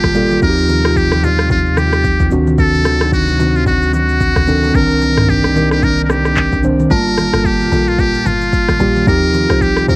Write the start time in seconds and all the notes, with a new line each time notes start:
Already playing: G1 A#2 G3 A#3 F4 G4 A5
0.04 kick, cross-stick, high conga, shaker
0.14 G3 A#3 F4 A4, low conga, shaker
0.31 high conga, shaker
0.41 D#2 C3 F3 G3 C4 D#4 F#4 A#4, kick, shaker
0.50 G4
0.58 shaker
0.69 high conga, shaker
0.85 C4 F4 G4, cross-stick, shaker
0.96 G4, kick, shaker
1.12 cross-stick, high conga, shaker
1.23 C4 F4 G4, high conga, low conga, shaker
1.39 cross-stick, shaker
1.50 F4, kick, low conga, shaker
1.66 shaker
1.77 G4, cross-stick, high conga, shaker
1.93 cross-stick, shaker
2.04 kick, shaker
2.20 kick, high conga, shaker
2.31 D2 C3 D#3 F#3 C4 D4 F#4, low conga, shaker
2.47 high conga, shaker
2.58 A4, kick, shaker
2.74 shaker
2.85 cross-stick, high conga, shaker
3.01 C4 D#4 F#4, cross-stick, shaker
3.12 F#4, kick, shaker
3.28 high conga, shaker
3.39 C4 D#4 F#4, high conga, low conga, shaker
3.55 F4, shaker
3.66 F#4, kick, low conga, shaker
3.82 shaker
3.93 F#4, high conga, shaker
4.09 shaker
4.20 kick, shaker
4.36 kick, cross-stick, high conga, shaker
4.47 D#3 C4 D4 A4, low conga, shaker
4.63 high conga, shaker
4.74 C2 D3 D#3 A#3 C4 D4 A#4, kick, shaker
4.80 D#3
4.91 shaker
5.01 high conga, shaker
5.17 D4 D#4 A#4, cross-stick, mid tom, shaker
5.29 G4, kick, shaker
5.44 cross-stick, high conga, shaker
5.55 D4 D#4 A#4, high conga, low conga, shaker
5.71 G4, cross-stick, shaker
5.82 A#4, kick, low conga, shaker
5.98 shaker
6.04 A#4
6.09 G4, cross-stick, high conga, shaker
6.25 cross-stick, shaker
6.37 kick, clap, shaker
6.52 kick, high conga, shaker
6.63 D#3 C4 D4 C5, low conga, shaker
6.80 high conga, shaker
6.90 G1 A#2 G3 A3 A#3 F4 A#4 A5, kick, shaker
6.97 A#3
7.07 shaker
7.17 cross-stick, high conga, shaker
7.33 G1 A#3 F4 A4, cross-stick, shaker
7.45 G4, kick, shaker
7.60 high conga, shaker
7.72 A#1 A#3 F4 A4, high conga, low conga, shaker
7.88 F4, shaker
7.99 G4, kick, low conga, shaker
8.14 shaker
8.26 G1 F4, high conga, shaker
8.41 shaker
8.53 kick, shaker
8.68 kick, cross-stick, high conga, shaker
8.79 A#1 G3 A#3 F4 G4, low conga, shaker
8.96 high conga, shaker
9.06 D#2 C3 F3 G3 C4 D#4 F4 G4 A#4, kick, shaker
9.23 shaker
9.34 high conga, shaker
9.49 C2 F4 G4 C5, cross-stick, shaker
9.61 G4, kick, shaker
9.76 cross-stick, high conga, shaker
9.88 D#2 F4 G4 A#4 C5, high conga, low conga, shaker